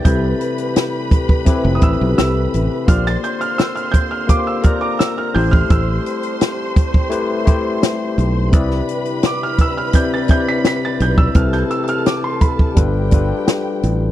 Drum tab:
HH |x-xxx-x-x-x-x-x-|x-xxxxx-x-x-x-o-|x-xxx-x-x-x-x-x-|x-xxx-x-x-x-x-x-|
SD |----o-------o---|-o--o-------o---|----o-------o---|-o--o-------o---|
BD |o-----ooo-o-----|o-----o-o-o----o|o-----oo--o-----|o-----o-o-o----o|

HH |x-xxx-x-x-x-x-x-|
SD |-o--o-------o---|
BD |o-----ooo-o-----|